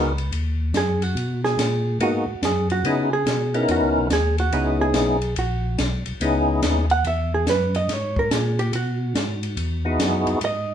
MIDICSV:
0, 0, Header, 1, 5, 480
1, 0, Start_track
1, 0, Key_signature, 5, "minor"
1, 0, Tempo, 420463
1, 1329, Time_signature, 4, 2, 24, 8
1, 12264, End_track
2, 0, Start_track
2, 0, Title_t, "Hollow-body jazz guitar"
2, 0, Program_c, 0, 26
2, 0, Note_on_c, 0, 71, 72
2, 342, Note_off_c, 0, 71, 0
2, 881, Note_on_c, 0, 68, 75
2, 1177, Note_off_c, 0, 68, 0
2, 1177, Note_on_c, 0, 66, 75
2, 1645, Note_off_c, 0, 66, 0
2, 1649, Note_on_c, 0, 68, 86
2, 2246, Note_off_c, 0, 68, 0
2, 2319, Note_on_c, 0, 66, 73
2, 2751, Note_off_c, 0, 66, 0
2, 2798, Note_on_c, 0, 68, 80
2, 3089, Note_off_c, 0, 68, 0
2, 3102, Note_on_c, 0, 66, 78
2, 3539, Note_off_c, 0, 66, 0
2, 3576, Note_on_c, 0, 68, 88
2, 4169, Note_off_c, 0, 68, 0
2, 4240, Note_on_c, 0, 66, 68
2, 4671, Note_off_c, 0, 66, 0
2, 4715, Note_on_c, 0, 68, 88
2, 5007, Note_off_c, 0, 68, 0
2, 5020, Note_on_c, 0, 66, 77
2, 5458, Note_off_c, 0, 66, 0
2, 5496, Note_on_c, 0, 68, 98
2, 6089, Note_off_c, 0, 68, 0
2, 6150, Note_on_c, 0, 66, 65
2, 6586, Note_off_c, 0, 66, 0
2, 7893, Note_on_c, 0, 78, 102
2, 8048, Note_off_c, 0, 78, 0
2, 8073, Note_on_c, 0, 76, 84
2, 8366, Note_off_c, 0, 76, 0
2, 8384, Note_on_c, 0, 68, 76
2, 8534, Note_off_c, 0, 68, 0
2, 8557, Note_on_c, 0, 71, 87
2, 8849, Note_off_c, 0, 71, 0
2, 8859, Note_on_c, 0, 75, 97
2, 9051, Note_off_c, 0, 75, 0
2, 9051, Note_on_c, 0, 73, 75
2, 9336, Note_off_c, 0, 73, 0
2, 9350, Note_on_c, 0, 70, 87
2, 9514, Note_off_c, 0, 70, 0
2, 9514, Note_on_c, 0, 68, 72
2, 9807, Note_off_c, 0, 68, 0
2, 9809, Note_on_c, 0, 67, 87
2, 9966, Note_off_c, 0, 67, 0
2, 9994, Note_on_c, 0, 66, 71
2, 11378, Note_off_c, 0, 66, 0
2, 11927, Note_on_c, 0, 75, 87
2, 12264, Note_off_c, 0, 75, 0
2, 12264, End_track
3, 0, Start_track
3, 0, Title_t, "Tonewheel organ"
3, 0, Program_c, 1, 16
3, 0, Note_on_c, 1, 59, 56
3, 0, Note_on_c, 1, 63, 57
3, 0, Note_on_c, 1, 66, 54
3, 0, Note_on_c, 1, 68, 68
3, 0, Note_on_c, 1, 70, 59
3, 142, Note_off_c, 1, 70, 0
3, 143, Note_off_c, 1, 59, 0
3, 145, Note_off_c, 1, 63, 0
3, 146, Note_off_c, 1, 66, 0
3, 146, Note_off_c, 1, 68, 0
3, 2289, Note_on_c, 1, 58, 56
3, 2292, Note_on_c, 1, 59, 49
3, 2294, Note_on_c, 1, 63, 48
3, 2297, Note_on_c, 1, 68, 60
3, 2298, Note_on_c, 1, 66, 51
3, 2572, Note_off_c, 1, 58, 0
3, 2574, Note_off_c, 1, 59, 0
3, 2574, Note_off_c, 1, 63, 0
3, 2576, Note_off_c, 1, 68, 0
3, 2577, Note_off_c, 1, 66, 0
3, 3253, Note_on_c, 1, 59, 58
3, 3257, Note_on_c, 1, 63, 54
3, 3261, Note_on_c, 1, 61, 53
3, 3261, Note_on_c, 1, 64, 53
3, 3266, Note_on_c, 1, 68, 66
3, 3534, Note_off_c, 1, 59, 0
3, 3536, Note_off_c, 1, 63, 0
3, 3538, Note_off_c, 1, 61, 0
3, 3538, Note_off_c, 1, 64, 0
3, 3540, Note_off_c, 1, 68, 0
3, 4042, Note_on_c, 1, 59, 72
3, 4044, Note_on_c, 1, 61, 63
3, 4049, Note_on_c, 1, 63, 57
3, 4049, Note_on_c, 1, 64, 63
3, 4053, Note_on_c, 1, 70, 77
3, 4654, Note_off_c, 1, 59, 0
3, 4655, Note_off_c, 1, 61, 0
3, 4657, Note_off_c, 1, 63, 0
3, 4657, Note_off_c, 1, 64, 0
3, 4660, Note_off_c, 1, 70, 0
3, 5168, Note_on_c, 1, 59, 59
3, 5171, Note_on_c, 1, 61, 52
3, 5175, Note_on_c, 1, 64, 51
3, 5176, Note_on_c, 1, 63, 49
3, 5181, Note_on_c, 1, 68, 63
3, 5900, Note_off_c, 1, 59, 0
3, 5901, Note_off_c, 1, 61, 0
3, 5903, Note_off_c, 1, 63, 0
3, 5903, Note_off_c, 1, 64, 0
3, 5906, Note_off_c, 1, 68, 0
3, 7090, Note_on_c, 1, 59, 68
3, 7095, Note_on_c, 1, 61, 59
3, 7098, Note_on_c, 1, 64, 59
3, 7099, Note_on_c, 1, 63, 62
3, 7106, Note_on_c, 1, 68, 72
3, 7821, Note_off_c, 1, 59, 0
3, 7823, Note_off_c, 1, 61, 0
3, 7825, Note_off_c, 1, 63, 0
3, 7825, Note_off_c, 1, 64, 0
3, 7828, Note_off_c, 1, 68, 0
3, 11243, Note_on_c, 1, 59, 68
3, 11248, Note_on_c, 1, 63, 58
3, 11254, Note_on_c, 1, 64, 60
3, 11254, Note_on_c, 1, 66, 59
3, 11256, Note_on_c, 1, 68, 70
3, 11857, Note_off_c, 1, 59, 0
3, 11859, Note_off_c, 1, 63, 0
3, 11862, Note_off_c, 1, 64, 0
3, 11862, Note_off_c, 1, 66, 0
3, 11863, Note_off_c, 1, 68, 0
3, 12264, End_track
4, 0, Start_track
4, 0, Title_t, "Tonewheel organ"
4, 0, Program_c, 2, 16
4, 0, Note_on_c, 2, 37, 90
4, 352, Note_off_c, 2, 37, 0
4, 357, Note_on_c, 2, 39, 80
4, 828, Note_off_c, 2, 39, 0
4, 840, Note_on_c, 2, 42, 92
4, 1310, Note_off_c, 2, 42, 0
4, 1312, Note_on_c, 2, 47, 78
4, 1786, Note_off_c, 2, 47, 0
4, 1793, Note_on_c, 2, 46, 81
4, 2266, Note_off_c, 2, 46, 0
4, 2269, Note_on_c, 2, 44, 77
4, 2571, Note_off_c, 2, 44, 0
4, 2589, Note_on_c, 2, 44, 38
4, 2675, Note_off_c, 2, 44, 0
4, 2756, Note_on_c, 2, 42, 88
4, 3227, Note_off_c, 2, 42, 0
4, 3233, Note_on_c, 2, 49, 75
4, 3706, Note_off_c, 2, 49, 0
4, 3716, Note_on_c, 2, 47, 85
4, 4187, Note_off_c, 2, 47, 0
4, 4200, Note_on_c, 2, 40, 77
4, 4359, Note_off_c, 2, 40, 0
4, 4360, Note_on_c, 2, 37, 51
4, 4521, Note_on_c, 2, 35, 57
4, 4524, Note_off_c, 2, 37, 0
4, 4673, Note_off_c, 2, 35, 0
4, 4679, Note_on_c, 2, 39, 88
4, 5148, Note_off_c, 2, 39, 0
4, 5160, Note_on_c, 2, 37, 78
4, 5629, Note_off_c, 2, 37, 0
4, 5634, Note_on_c, 2, 35, 90
4, 6106, Note_off_c, 2, 35, 0
4, 6115, Note_on_c, 2, 34, 82
4, 6586, Note_off_c, 2, 34, 0
4, 6598, Note_on_c, 2, 35, 91
4, 6895, Note_off_c, 2, 35, 0
4, 6917, Note_on_c, 2, 35, 37
4, 7001, Note_off_c, 2, 35, 0
4, 7081, Note_on_c, 2, 37, 84
4, 7549, Note_off_c, 2, 37, 0
4, 7563, Note_on_c, 2, 39, 93
4, 8031, Note_off_c, 2, 39, 0
4, 8042, Note_on_c, 2, 40, 83
4, 8511, Note_off_c, 2, 40, 0
4, 8520, Note_on_c, 2, 42, 93
4, 8990, Note_off_c, 2, 42, 0
4, 8994, Note_on_c, 2, 44, 74
4, 9467, Note_off_c, 2, 44, 0
4, 9483, Note_on_c, 2, 46, 93
4, 9952, Note_off_c, 2, 46, 0
4, 9958, Note_on_c, 2, 47, 87
4, 10429, Note_off_c, 2, 47, 0
4, 10440, Note_on_c, 2, 44, 98
4, 10911, Note_off_c, 2, 44, 0
4, 10917, Note_on_c, 2, 40, 83
4, 11390, Note_off_c, 2, 40, 0
4, 11399, Note_on_c, 2, 42, 88
4, 11698, Note_off_c, 2, 42, 0
4, 11717, Note_on_c, 2, 42, 41
4, 11802, Note_off_c, 2, 42, 0
4, 11877, Note_on_c, 2, 44, 78
4, 12264, Note_off_c, 2, 44, 0
4, 12264, End_track
5, 0, Start_track
5, 0, Title_t, "Drums"
5, 208, Note_on_c, 9, 51, 43
5, 322, Note_off_c, 9, 51, 0
5, 371, Note_on_c, 9, 51, 56
5, 485, Note_off_c, 9, 51, 0
5, 847, Note_on_c, 9, 38, 62
5, 847, Note_on_c, 9, 44, 50
5, 847, Note_on_c, 9, 51, 60
5, 961, Note_off_c, 9, 38, 0
5, 961, Note_off_c, 9, 44, 0
5, 961, Note_off_c, 9, 51, 0
5, 1164, Note_on_c, 9, 51, 44
5, 1278, Note_off_c, 9, 51, 0
5, 1334, Note_on_c, 9, 51, 53
5, 1448, Note_off_c, 9, 51, 0
5, 1650, Note_on_c, 9, 38, 35
5, 1765, Note_off_c, 9, 38, 0
5, 1813, Note_on_c, 9, 38, 63
5, 1813, Note_on_c, 9, 44, 59
5, 1813, Note_on_c, 9, 51, 71
5, 1927, Note_off_c, 9, 38, 0
5, 1927, Note_off_c, 9, 44, 0
5, 1927, Note_off_c, 9, 51, 0
5, 2288, Note_on_c, 9, 51, 62
5, 2402, Note_off_c, 9, 51, 0
5, 2771, Note_on_c, 9, 38, 59
5, 2771, Note_on_c, 9, 44, 50
5, 2771, Note_on_c, 9, 51, 60
5, 2885, Note_off_c, 9, 38, 0
5, 2885, Note_off_c, 9, 44, 0
5, 2885, Note_off_c, 9, 51, 0
5, 3080, Note_on_c, 9, 51, 43
5, 3194, Note_off_c, 9, 51, 0
5, 3249, Note_on_c, 9, 51, 58
5, 3363, Note_off_c, 9, 51, 0
5, 3728, Note_on_c, 9, 38, 63
5, 3728, Note_on_c, 9, 44, 58
5, 3728, Note_on_c, 9, 51, 64
5, 3842, Note_off_c, 9, 38, 0
5, 3842, Note_off_c, 9, 44, 0
5, 3842, Note_off_c, 9, 51, 0
5, 4045, Note_on_c, 9, 51, 39
5, 4159, Note_off_c, 9, 51, 0
5, 4206, Note_on_c, 9, 51, 62
5, 4320, Note_off_c, 9, 51, 0
5, 4685, Note_on_c, 9, 38, 65
5, 4685, Note_on_c, 9, 44, 46
5, 4685, Note_on_c, 9, 51, 64
5, 4799, Note_off_c, 9, 38, 0
5, 4799, Note_off_c, 9, 44, 0
5, 4799, Note_off_c, 9, 51, 0
5, 5004, Note_on_c, 9, 51, 43
5, 5118, Note_off_c, 9, 51, 0
5, 5166, Note_on_c, 9, 51, 64
5, 5280, Note_off_c, 9, 51, 0
5, 5638, Note_on_c, 9, 38, 71
5, 5638, Note_on_c, 9, 44, 58
5, 5638, Note_on_c, 9, 51, 67
5, 5753, Note_off_c, 9, 38, 0
5, 5753, Note_off_c, 9, 44, 0
5, 5753, Note_off_c, 9, 51, 0
5, 5954, Note_on_c, 9, 51, 44
5, 6069, Note_off_c, 9, 51, 0
5, 6121, Note_on_c, 9, 51, 59
5, 6235, Note_off_c, 9, 51, 0
5, 6604, Note_on_c, 9, 38, 67
5, 6604, Note_on_c, 9, 44, 54
5, 6604, Note_on_c, 9, 51, 62
5, 6718, Note_off_c, 9, 38, 0
5, 6718, Note_off_c, 9, 44, 0
5, 6718, Note_off_c, 9, 51, 0
5, 6914, Note_on_c, 9, 51, 44
5, 7028, Note_off_c, 9, 51, 0
5, 7088, Note_on_c, 9, 51, 61
5, 7202, Note_off_c, 9, 51, 0
5, 7564, Note_on_c, 9, 38, 71
5, 7564, Note_on_c, 9, 44, 60
5, 7564, Note_on_c, 9, 51, 65
5, 7678, Note_off_c, 9, 38, 0
5, 7678, Note_off_c, 9, 44, 0
5, 7678, Note_off_c, 9, 51, 0
5, 7876, Note_on_c, 9, 51, 44
5, 7990, Note_off_c, 9, 51, 0
5, 8042, Note_on_c, 9, 51, 59
5, 8157, Note_off_c, 9, 51, 0
5, 8526, Note_on_c, 9, 38, 67
5, 8526, Note_on_c, 9, 44, 52
5, 8526, Note_on_c, 9, 51, 61
5, 8640, Note_off_c, 9, 38, 0
5, 8640, Note_off_c, 9, 44, 0
5, 8640, Note_off_c, 9, 51, 0
5, 8843, Note_on_c, 9, 51, 48
5, 8957, Note_off_c, 9, 51, 0
5, 9008, Note_on_c, 9, 38, 38
5, 9008, Note_on_c, 9, 51, 64
5, 9122, Note_off_c, 9, 38, 0
5, 9122, Note_off_c, 9, 51, 0
5, 9321, Note_on_c, 9, 36, 58
5, 9435, Note_off_c, 9, 36, 0
5, 9490, Note_on_c, 9, 38, 70
5, 9490, Note_on_c, 9, 44, 62
5, 9490, Note_on_c, 9, 51, 68
5, 9604, Note_off_c, 9, 38, 0
5, 9604, Note_off_c, 9, 44, 0
5, 9604, Note_off_c, 9, 51, 0
5, 9807, Note_on_c, 9, 51, 44
5, 9921, Note_off_c, 9, 51, 0
5, 9967, Note_on_c, 9, 51, 63
5, 10081, Note_off_c, 9, 51, 0
5, 10450, Note_on_c, 9, 38, 68
5, 10450, Note_on_c, 9, 44, 52
5, 10450, Note_on_c, 9, 51, 67
5, 10565, Note_off_c, 9, 38, 0
5, 10565, Note_off_c, 9, 44, 0
5, 10565, Note_off_c, 9, 51, 0
5, 10765, Note_on_c, 9, 51, 45
5, 10879, Note_off_c, 9, 51, 0
5, 10926, Note_on_c, 9, 51, 63
5, 11040, Note_off_c, 9, 51, 0
5, 11412, Note_on_c, 9, 38, 73
5, 11412, Note_on_c, 9, 44, 69
5, 11412, Note_on_c, 9, 51, 69
5, 11526, Note_off_c, 9, 38, 0
5, 11526, Note_off_c, 9, 44, 0
5, 11526, Note_off_c, 9, 51, 0
5, 11721, Note_on_c, 9, 51, 42
5, 11835, Note_off_c, 9, 51, 0
5, 11885, Note_on_c, 9, 51, 61
5, 11999, Note_off_c, 9, 51, 0
5, 12264, End_track
0, 0, End_of_file